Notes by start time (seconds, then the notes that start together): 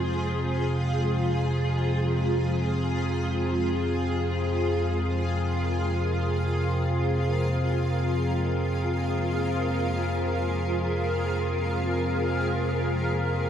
Already playing: F2 C3 C4 F4 G#4 C5 F5
3.95 A#4